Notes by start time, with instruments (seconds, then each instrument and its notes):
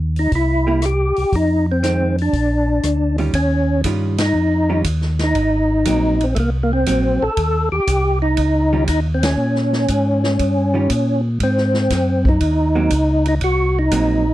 Already playing: tonewheel organ D#2
0.16 tonewheel organ D#4, open hi-hat
0.32 tonewheel organ C2 E4, kick, open hi-hat
0.67 hollow-body jazz guitar G3 A#3 E4
0.82 tonewheel organ G4, cross-stick, closed hi-hat
1.16 tonewheel organ C2, open hi-hat
1.32 tonewheel organ F2 D#4, kick, open hi-hat
1.72 tonewheel organ C4
1.83 hollow-body jazz guitar D#3 G#3 C4, snare, closed hi-hat
2.18 tonewheel organ D4, open hi-hat
2.33 tonewheel organ A#1, kick, open hi-hat
2.83 tonewheel organ D2, cross-stick, closed hi-hat
3.18 hollow-body jazz guitar D#3 G3 C#4 F4, open hi-hat
3.33 tonewheel organ D#2 C#4, kick, ride
3.84 tonewheel organ G2, hollow-body jazz guitar D#3 G3 C#4 F4, kick, hi-hat pedal, ride
4.18 tonewheel organ D#4, snare, ride
4.34 tonewheel organ F2
4.69 hollow-body jazz guitar D#3 G3 C#4 F4
4.84 tonewheel organ D#2, kick, hi-hat pedal, ride
5.01 snare
5.19 snare, ride
5.24 tonewheel organ D#4
5.35 tonewheel organ G#1, kick, ride
5.85 tonewheel organ A#1, hollow-body jazz guitar F#3 A#3 C4, kick, hi-hat pedal, ride
6.20 tonewheel organ C4, ride
6.35 tonewheel organ C2 A3, kick, ride
6.40 tonewheel organ A#3
6.63 tonewheel organ A#3
6.73 tonewheel organ C4
6.86 tonewheel organ A#1, hollow-body jazz guitar F#3 A#3 C4, kick, hi-hat pedal, ride
7.21 tonewheel organ A#1 A4
7.37 tonewheel organ D#2, kick, ride
7.72 tonewheel organ D#2 G4
7.87 tonewheel organ C2, kick, hi-hat pedal, ride
8.22 tonewheel organ D#4
8.37 tonewheel organ C#2, kick, ride
8.73 hollow-body jazz guitar D#3 G3 C#4 F4
8.88 tonewheel organ D#2 D#4, kick, hi-hat pedal, ride
9.14 tonewheel organ C4
9.23 tonewheel organ C#4, snare, ride
9.38 tonewheel organ A#2
9.55 snare
9.73 snare
9.88 tonewheel organ G#2, kick, hi-hat pedal, ride
10.24 snare
10.39 tonewheel organ G2, kick, ride
10.74 hollow-body jazz guitar D#3 G3 C#4 F4
10.89 tonewheel organ A#2, kick, hi-hat pedal, ride
11.40 tonewheel organ G#2 C4, kick, ride
11.57 snare
11.74 snare
11.90 tonewheel organ F#2, kick, snare, hi-hat pedal, ride
12.25 tonewheel organ D#4, kick
12.40 tonewheel organ D#2, kick, ride
12.75 hollow-body jazz guitar F#3 A#3 C4
12.90 tonewheel organ C#2, kick, hi-hat pedal, ride
13.26 tonewheel organ D#4, ride
13.41 tonewheel organ C2 F#4, kick, ride
13.79 tonewheel organ D#4
13.91 tonewheel organ A#1, hollow-body jazz guitar F#3 A#3 C4, kick, hi-hat pedal, ride